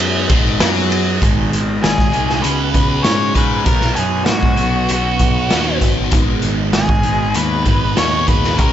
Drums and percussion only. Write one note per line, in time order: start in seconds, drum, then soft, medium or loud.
0.00 ride medium
0.00 shaker medium
0.29 kick loud
0.29 ride medium
0.29 shaker medium
0.60 snare loud
0.60 ride medium
0.60 shaker medium
0.76 snare soft
0.91 ride medium
0.91 shaker medium
1.22 kick medium
1.22 closed hi-hat medium
1.53 closed hi-hat medium
1.84 snare loud
1.84 closed hi-hat medium
1.98 kick medium
1.98 snare soft
2.13 closed hi-hat soft
2.29 snare soft
2.44 closed hi-hat medium
2.74 kick medium
2.74 closed hi-hat soft
3.04 snare medium
3.04 closed hi-hat medium
3.35 kick medium
3.35 closed hi-hat medium
3.66 kick loud
3.66 closed hi-hat medium
3.81 snare soft
3.96 closed hi-hat medium
4.26 snare loud
4.26 closed hi-hat medium
4.43 kick medium
4.57 closed hi-hat medium
4.89 closed hi-hat medium
5.19 kick medium
5.19 closed hi-hat medium
5.51 snare loud
5.51 closed hi-hat medium
5.81 kick medium
5.81 closed hi-hat medium
6.11 kick loud
6.11 closed hi-hat medium
6.42 closed hi-hat medium
6.73 snare loud
6.73 closed hi-hat medium
6.89 kick medium
7.03 closed hi-hat medium
7.34 closed hi-hat medium
7.65 kick medium
7.65 closed hi-hat soft
7.97 snare medium
7.97 closed hi-hat medium
8.28 kick medium
8.28 closed hi-hat soft
8.44 snare soft
8.58 kick loud
8.58 closed hi-hat medium